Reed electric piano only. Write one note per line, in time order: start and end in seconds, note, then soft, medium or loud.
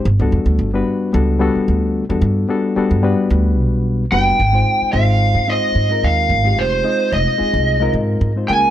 0.20 0.69 G3 medium
0.20 0.69 B3 medium
0.20 0.70 D4 medium
0.20 0.70 F#4 medium
0.20 0.70 A4 medium
0.74 1.11 G3 medium
0.74 1.11 B3 medium
0.74 1.11 D4 medium
0.74 1.11 F#4 medium
0.74 1.11 B4 medium
1.13 1.38 G3 medium
1.13 1.39 B3 medium
1.13 1.39 D4 medium
1.13 1.39 F#4 medium
1.13 1.39 A4 medium
1.40 2.03 G3 medium
1.40 2.03 B3 medium
1.40 2.04 D4 medium
1.40 2.04 F#4 medium
1.40 2.04 A4 medium
2.09 2.46 G3 medium
2.09 2.46 B3 medium
2.09 2.47 D4 medium
2.09 2.47 F#4 medium
2.09 2.47 A4 medium
2.49 2.74 G3 medium
2.49 2.74 B3 medium
2.49 2.75 D4 medium
2.49 2.75 F#4 medium
2.49 2.75 A4 medium
2.76 3.02 G3 medium
2.76 3.02 B3 medium
2.76 3.02 D4 medium
2.76 3.02 F#4 medium
2.76 3.02 A4 medium
3.03 4.04 G3 medium
3.03 4.04 B3 medium
3.03 4.04 D4 medium
3.03 4.05 F#4 medium
3.03 4.05 B4 medium
4.12 4.40 G3 medium
4.12 4.40 B3 medium
4.12 4.40 D4 medium
4.12 4.40 F#4 medium
4.12 4.40 B4 medium
4.53 4.91 G#3 medium
4.53 4.90 C4 medium
4.53 4.91 D#4 medium
4.53 4.91 F4 medium
4.53 4.91 C5 medium
4.93 5.44 G#3 medium
4.93 5.44 C4 medium
4.93 5.45 D#4 medium
4.93 5.45 F4 medium
4.93 5.45 C5 medium
5.47 5.86 G#3 medium
5.47 5.87 C4 medium
5.47 5.87 D#4 medium
5.47 5.87 F4 medium
5.47 5.88 C5 medium
5.89 6.40 G#3 medium
5.89 6.40 C4 medium
5.89 6.40 D#4 medium
5.89 6.40 F4 medium
5.89 6.41 A#4 medium
6.44 6.81 G#3 medium
6.44 6.82 C4 medium
6.44 6.82 D#4 medium
6.44 6.82 F4 medium
6.44 6.82 G4 medium
6.83 7.35 G#3 medium
6.83 7.35 C4 medium
6.83 7.35 D#4 medium
6.83 7.36 F4 medium
6.83 7.35 D#5 medium
7.38 7.77 G#3 medium
7.38 7.77 C4 medium
7.38 7.77 D#4 medium
7.38 7.78 F4 medium
7.38 7.78 G#4 medium
7.80 8.31 G#3 medium
7.80 8.31 C4 medium
7.80 8.31 D#4 medium
7.80 8.31 F4 medium
7.80 8.32 A#4 medium
8.36 8.47 G#3 medium
8.36 8.49 C4 medium
8.36 8.49 D#4 medium
8.36 8.49 F4 medium
8.36 8.49 C5 medium
8.48 8.70 G#3 medium
8.48 8.70 A#3 medium
8.48 8.70 C#4 medium
8.48 8.70 F4 medium
8.48 8.70 A#4 medium